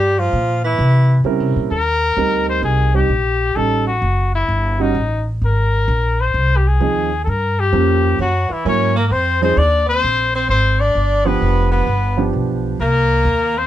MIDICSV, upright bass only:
0, 0, Header, 1, 3, 480
1, 0, Start_track
1, 0, Key_signature, -3, "minor"
1, 0, Tempo, 461538
1, 1784, Time_signature, 4, 2, 24, 8
1, 14215, End_track
2, 0, Start_track
2, 0, Title_t, "Upright bass"
2, 0, Program_c, 0, 32
2, 0, Note_on_c, 0, 43, 83
2, 329, Note_off_c, 0, 43, 0
2, 342, Note_on_c, 0, 46, 82
2, 808, Note_off_c, 0, 46, 0
2, 819, Note_on_c, 0, 48, 97
2, 1284, Note_off_c, 0, 48, 0
2, 1290, Note_on_c, 0, 49, 76
2, 1455, Note_off_c, 0, 49, 0
2, 1455, Note_on_c, 0, 48, 48
2, 1616, Note_off_c, 0, 48, 0
2, 1623, Note_on_c, 0, 46, 66
2, 1772, Note_off_c, 0, 46, 0
2, 1778, Note_on_c, 0, 39, 68
2, 2247, Note_off_c, 0, 39, 0
2, 2253, Note_on_c, 0, 38, 88
2, 2725, Note_off_c, 0, 38, 0
2, 2730, Note_on_c, 0, 36, 81
2, 3204, Note_off_c, 0, 36, 0
2, 3209, Note_on_c, 0, 34, 79
2, 3684, Note_off_c, 0, 34, 0
2, 3701, Note_on_c, 0, 33, 72
2, 4170, Note_off_c, 0, 33, 0
2, 4178, Note_on_c, 0, 30, 82
2, 4649, Note_off_c, 0, 30, 0
2, 4664, Note_on_c, 0, 31, 79
2, 5133, Note_off_c, 0, 31, 0
2, 5145, Note_on_c, 0, 33, 84
2, 5614, Note_off_c, 0, 33, 0
2, 5632, Note_on_c, 0, 32, 76
2, 6098, Note_off_c, 0, 32, 0
2, 6114, Note_on_c, 0, 34, 92
2, 6579, Note_off_c, 0, 34, 0
2, 6595, Note_on_c, 0, 36, 88
2, 7060, Note_off_c, 0, 36, 0
2, 7079, Note_on_c, 0, 39, 76
2, 7543, Note_off_c, 0, 39, 0
2, 7562, Note_on_c, 0, 43, 79
2, 8024, Note_off_c, 0, 43, 0
2, 8036, Note_on_c, 0, 41, 86
2, 8501, Note_off_c, 0, 41, 0
2, 8517, Note_on_c, 0, 42, 83
2, 8813, Note_off_c, 0, 42, 0
2, 8996, Note_on_c, 0, 44, 77
2, 9461, Note_off_c, 0, 44, 0
2, 9472, Note_on_c, 0, 41, 72
2, 9939, Note_off_c, 0, 41, 0
2, 9951, Note_on_c, 0, 39, 87
2, 10418, Note_off_c, 0, 39, 0
2, 10439, Note_on_c, 0, 34, 82
2, 10901, Note_off_c, 0, 34, 0
2, 10909, Note_on_c, 0, 32, 78
2, 11376, Note_off_c, 0, 32, 0
2, 11391, Note_on_c, 0, 31, 76
2, 11856, Note_off_c, 0, 31, 0
2, 11874, Note_on_c, 0, 29, 79
2, 12338, Note_off_c, 0, 29, 0
2, 12344, Note_on_c, 0, 31, 84
2, 12812, Note_off_c, 0, 31, 0
2, 12825, Note_on_c, 0, 35, 72
2, 13292, Note_off_c, 0, 35, 0
2, 13306, Note_on_c, 0, 36, 76
2, 13771, Note_off_c, 0, 36, 0
2, 13780, Note_on_c, 0, 39, 85
2, 14215, Note_off_c, 0, 39, 0
2, 14215, End_track
3, 0, Start_track
3, 0, Title_t, "Muted upright bass strokes"
3, 8846, Note_on_c, 9, 29, 32
3, 8950, Note_off_c, 9, 29, 0
3, 14215, End_track
0, 0, End_of_file